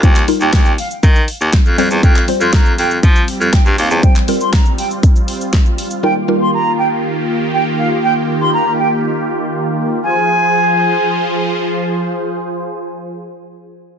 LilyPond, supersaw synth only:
\new Staff \with { instrumentName = "Supersaw synth" } { \time 4/4 \key f \minor \tempo 4 = 120 r1 | g1~ | g1 | <ees bes g'>1~ |
<ees bes g'>1 | <f f' aes' c''>1~ | <f f' aes' c''>1 | }